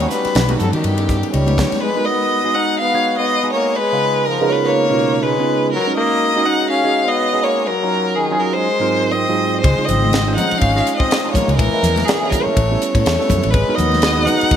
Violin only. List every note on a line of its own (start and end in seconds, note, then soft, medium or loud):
0.00 0.10 C#5 medium
0.11 0.57 B4 medium
0.59 0.73 A4 medium
0.73 1.29 G4 medium
1.32 1.82 C#5 medium
1.81 2.07 B4 medium
2.05 2.56 D#5 medium
2.55 2.78 F#5 medium
2.79 3.15 F5 loud
3.18 3.51 D#5 loud
3.52 3.78 C#5 medium
3.76 4.27 B4 loud
4.25 4.50 A#4 medium
4.49 4.67 B4 medium
4.49 4.53 C#5 medium
4.65 5.25 C#5 loud
5.23 5.71 B4 medium
5.72 5.95 A#4 medium
5.97 6.47 D#5 loud
6.46 6.69 F#5 loud
6.70 7.09 F5 loud
7.08 7.45 D#5 loud
7.44 7.68 C#5 medium
7.67 8.17 A#4 medium
8.15 8.41 G#4 medium
8.39 8.55 A#4 medium
8.53 9.13 C5 medium
9.12 9.60 D#5 medium
9.61 9.86 C5 medium
9.85 10.34 D#5 medium
10.35 10.60 F#5 medium
10.58 10.96 F5 medium
10.96 11.30 D#5 medium
11.32 11.56 C#5 medium
11.57 12.06 A#4 medium
12.05 12.31 G#4 medium
12.30 12.45 A#4 medium
12.43 13.01 C#5 medium
13.02 13.52 C#5 medium
13.51 13.77 B4 medium
13.75 14.27 D#5 medium
14.25 14.56 F#5 loud